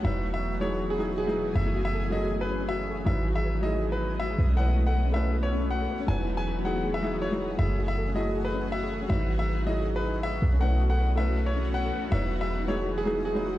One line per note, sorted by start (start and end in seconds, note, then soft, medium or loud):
0.00 0.58 F#3 medium
0.00 1.51 B3 medium
0.00 0.59 D#4 medium
0.00 4.34 F#4 medium
0.04 1.54 E1 medium
0.04 1.54 E3 medium
0.04 0.59 E4 medium
0.04 3.03 G#4 medium
0.04 0.60 B4 medium
0.04 1.54 D#5 medium
0.04 0.25 E5 medium
0.34 0.54 E5 medium
0.60 0.97 F#3 medium
0.60 0.97 D#4 medium
0.60 0.97 E4 medium
0.60 0.98 G#4 medium
0.60 0.81 C#5 medium
0.90 1.10 G#4 medium
0.98 1.25 F#3 medium
0.98 1.25 D#4 medium
0.98 1.26 E4 medium
0.98 1.26 G#4 medium
1.18 1.46 G#4 medium
1.27 1.52 F#3 medium
1.27 1.53 D#4 medium
1.27 1.54 E4 medium
1.27 1.54 G#4 medium
1.53 3.05 F#1 medium
1.53 9.06 E3 medium
1.53 2.08 F#3 medium
1.53 2.10 A3 medium
1.53 3.05 A3 medium
1.53 1.59 C#4 medium
1.53 3.05 C#4 medium
1.53 2.10 E4 medium
1.53 2.11 G#4 medium
1.53 1.76 E5 medium
1.66 1.73 E4 medium
1.74 1.83 F#4 medium
1.84 1.87 G#4 medium
1.84 2.05 E5 medium
1.93 1.96 A4 loud
2.03 2.10 C#4 medium
2.10 3.03 F#3 medium
2.10 3.04 A3 medium
2.10 2.18 E4 medium
2.10 3.05 E4 medium
2.10 2.33 D#5 medium
2.14 3.05 G#4 medium
2.22 2.25 F#4 medium
2.31 2.36 G#4 medium
2.41 2.48 A4 medium
2.41 2.61 B4 medium
2.50 2.58 C#4 medium
2.60 2.63 C#4 medium
2.68 2.74 F#4 medium
2.68 2.96 E5 medium
2.79 2.82 G#4 medium
2.87 2.93 A4 medium
2.98 3.02 C#4 medium
3.04 4.37 G#1 medium
3.04 3.59 F#3 medium
3.04 4.37 G#3 medium
3.04 7.55 B3 medium
3.04 3.61 D#4 medium
3.04 3.10 D#4 medium
3.04 3.61 E4 medium
3.04 3.62 B4 medium
3.04 4.37 D#5 medium
3.04 3.27 E5 medium
3.17 3.24 E4 medium
3.25 3.33 F#4 loud
3.35 3.38 G#4 medium
3.35 3.56 E5 medium
3.44 3.47 B4 loud
3.54 3.61 D#4 medium
3.61 4.36 F#3 medium
3.61 4.37 D#4 medium
3.61 3.69 E4 medium
3.61 4.38 E4 medium
3.61 3.83 D#5 medium
3.65 4.38 G#4 medium
3.73 3.76 F#4 medium
3.82 3.87 G#4 medium
3.92 3.99 B4 medium
3.92 4.12 B4 medium
4.01 4.09 D#4 loud
4.11 4.14 D#4 medium
4.20 4.25 F#4 medium
4.20 4.47 E5 medium
4.30 4.33 G#4 medium
4.38 5.88 B1 medium
4.38 6.06 A3 medium
4.38 6.06 C#4 medium
4.38 10.38 F#4 medium
4.38 4.44 B4 medium
4.49 4.53 C#4 medium
4.55 5.11 A3 medium
4.55 5.11 C#4 medium
4.55 4.61 C#4 medium
4.55 5.12 E4 medium
4.55 5.13 B4 medium
4.55 4.78 F#5 medium
4.68 4.75 E4 medium
4.76 4.84 F#4 loud
4.86 4.89 A4 medium
4.86 5.07 F#5 medium
4.95 4.98 B4 loud
5.05 5.12 C#4 medium
5.12 6.05 A3 medium
5.12 6.06 C#4 medium
5.12 5.19 E4 medium
5.12 6.07 E4 medium
5.12 6.07 B4 medium
5.12 5.34 E5 medium
5.24 5.27 F#4 medium
5.33 5.38 A4 medium
5.43 5.50 B4 medium
5.43 5.63 C#5 medium
5.52 5.60 C#4 medium
5.62 5.65 C#4 medium
5.71 5.76 F#4 medium
5.71 5.98 F#5 medium
5.81 5.84 A4 medium
5.90 5.95 B4 medium
6.00 6.04 C#4 medium
6.06 7.58 E1 medium
6.06 6.62 F#3 medium
6.06 6.63 D#4 medium
6.06 6.12 D#4 medium
6.06 6.63 E4 medium
6.06 10.38 G#4 medium
6.06 7.58 D#5 medium
6.06 6.29 G#5 medium
6.10 6.64 B4 medium
6.19 6.26 E4 medium
6.27 6.35 F#4 loud
6.37 6.40 G#4 medium
6.37 6.58 G#5 medium
6.46 6.49 B4 loud
6.57 6.63 D#4 medium
6.64 7.00 F#3 medium
6.64 7.01 D#4 medium
6.64 6.71 E4 medium
6.64 7.01 E4 medium
6.64 7.01 G#4 medium
6.64 6.85 F#5 medium
6.75 6.78 F#4 medium
6.84 6.89 G#4 medium
6.94 7.01 B4 medium
6.94 7.14 E5 medium
7.02 7.29 F#3 medium
7.02 7.29 D#4 medium
7.02 7.30 E4 medium
7.02 7.30 G#4 medium
7.02 7.08 E5 loud
7.13 7.18 D#5 medium
7.22 7.27 E4 medium
7.22 7.49 C#5 medium
7.31 7.56 F#3 medium
7.31 7.57 D#4 medium
7.31 7.36 E4 loud
7.31 7.57 E4 medium
7.31 7.58 G#4 medium
7.41 7.44 D#4 medium
7.51 7.55 F#4 medium
7.57 9.08 F#1 medium
7.57 8.12 F#3 medium
7.57 8.13 A3 medium
7.57 9.09 A3 medium
7.57 7.63 C#4 medium
7.57 9.09 C#4 medium
7.57 8.14 E4 medium
7.57 7.79 E5 medium
7.61 8.15 G#4 medium
7.70 7.77 E4 medium
7.78 7.86 F#4 loud
7.88 7.91 G#4 medium
7.88 8.08 E5 medium
7.97 8.00 A4 medium
8.07 8.14 C#4 medium
8.14 9.07 F#3 medium
8.14 9.08 A3 medium
8.14 8.21 E4 medium
8.14 9.09 E4 medium
8.14 9.09 G#4 medium
8.14 8.36 D#5 medium
8.26 8.29 F#4 medium
8.35 8.40 G#4 medium
8.45 8.52 A4 medium
8.45 8.65 B4 medium
8.54 8.62 C#4 loud
8.64 8.67 C#4 medium
8.72 8.78 F#4 medium
8.72 9.00 E5 medium
8.83 8.85 G#4 medium
8.91 8.97 A4 medium
9.01 9.06 C#4 medium
9.08 10.40 G#1 medium
9.08 13.58 E3 medium
9.08 9.63 F#3 medium
9.08 13.58 B3 medium
9.08 9.64 D#4 medium
9.08 9.65 E4 medium
9.08 10.41 D#5 medium
9.08 9.30 E5 medium
9.12 9.66 B4 medium
9.20 9.27 E4 medium
9.29 9.37 F#4 loud
9.39 9.42 G#4 medium
9.39 9.59 E5 medium
9.48 9.51 B4 loud
9.58 9.65 D#4 medium
9.65 10.40 F#3 medium
9.65 10.41 D#4 medium
9.65 9.72 E4 medium
9.65 10.41 E4 medium
9.65 10.42 G#4 medium
9.65 9.87 D#5 medium
9.77 9.80 F#4 medium
9.85 9.91 G#4 medium
9.95 10.03 B4 medium
9.95 10.16 B4 medium
10.04 10.13 D#4 loud
10.14 10.17 D#4 medium
10.23 10.29 F#4 medium
10.23 10.51 E5 medium
10.33 10.36 G#4 medium
10.42 11.91 B1 medium
10.42 12.10 A3 medium
10.42 12.10 C#4 medium
10.42 13.58 F#4 medium
10.42 10.48 B4 medium
10.52 10.57 C#4 medium
10.59 11.14 A3 medium
10.59 11.15 C#4 medium
10.59 10.64 C#4 medium
10.59 11.16 E4 medium
10.59 10.81 F#5 medium
10.63 11.17 B4 medium
10.71 10.78 E4 medium
10.80 10.88 F#4 loud
10.90 10.93 A4 medium
10.90 11.10 F#5 medium
10.99 11.02 B4 medium
11.09 11.16 C#4 medium
11.16 12.09 A3 medium
11.16 12.10 C#4 medium
11.16 11.23 E4 medium
11.16 12.10 E4 medium
11.16 11.38 E5 medium
11.20 12.11 B4 medium
11.28 11.31 F#4 medium
11.37 11.42 A4 medium
11.46 11.54 B4 medium
11.46 11.67 C#5 medium
11.55 11.64 C#4 loud
11.66 11.69 C#4 medium
11.74 11.80 F#4 medium
11.74 12.02 F#5 medium
11.85 11.87 A4 medium
11.93 11.99 B4 medium
12.03 12.08 C#4 medium
12.10 13.58 E1 medium
12.10 12.66 F#3 medium
12.10 13.58 G#3 medium
12.10 12.66 D#4 medium
12.10 12.15 D#4 medium
12.10 12.67 E4 medium
12.10 12.68 B4 medium
12.10 13.58 D#5 medium
12.10 12.32 E5 medium
12.22 12.29 E4 medium
12.31 12.39 F#4 medium
12.41 12.44 G#4 medium
12.41 12.61 E5 medium
12.50 12.53 B4 loud
12.60 12.67 D#4 medium
12.68 13.04 F#3 medium
12.68 13.04 D#4 medium
12.68 12.74 E4 medium
12.68 13.05 E4 medium
12.68 13.05 G#4 medium
12.68 12.89 C#5 medium
12.79 12.82 F#4 medium
12.87 12.93 G#4 medium
12.98 13.18 G#4 medium
12.98 13.05 B4 medium
13.05 13.33 F#3 medium
13.05 13.33 D#4 medium
13.05 13.33 E4 medium
13.05 13.15 G#4 medium
13.05 13.33 G#4 medium
13.16 13.21 D#4 medium
13.25 13.31 D#4 medium
13.25 13.53 G#4 medium
13.34 13.58 F#3 medium
13.34 13.58 D#4 medium
13.34 13.58 E4 medium
13.34 13.42 G#4 loud
13.34 13.58 G#4 medium
13.44 13.52 F#4 medium
13.54 13.57 E4 medium